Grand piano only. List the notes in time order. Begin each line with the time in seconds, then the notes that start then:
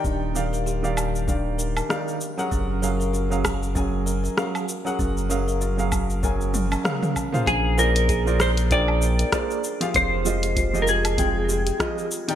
Already playing: D#3 D#4 G4 D5 G5
0.34 D#3 G4 D5 F5
0.83 D#3 G4 D5 F5
1.27 D#3 G4 D5 F5
1.89 D#3 D#4 G4 D5 F5
2.37 F#3 C#4 G#4 A#4 F#5
2.82 F#3 C#4 G#4 A#4 F5
3.30 F#3 C#4 G#4 A#4 F5
3.75 F#3 C#4 G#4 A#4 G#5
4.37 F#3 C#4 G#4 A#4 F5
4.85 F#3 C#4 G#4 A#4 F#5
5.29 F#3 C#4 G#4 A#4 F5
5.78 F#3 C#4 G#4 A#4 F5
6.23 F#3 C#4 G#4 A#4 G#5
6.84 F#3 C#4 G#4 A#4 F5
7.32 A#3 F4 G#4 C5 F5
7.77 A#3 F4 G#4 C5 D5
8.26 A#3 F4 G#4 C5 D5
8.70 A#3 F4 G#4 C5 G5
9.32 A#3 F4 G#4 C5 D5
9.80 F3 F4 G4 G#4 F5
10.25 F3 G#3 F4 G4 D#5
10.73 F3 G#3 F4 G4 D#5
11.17 F3 G#3 F4 G#4 G5
11.79 F3 F4 G4 G#4 D#5
12.28 D#3 D#4 G4 D5 G5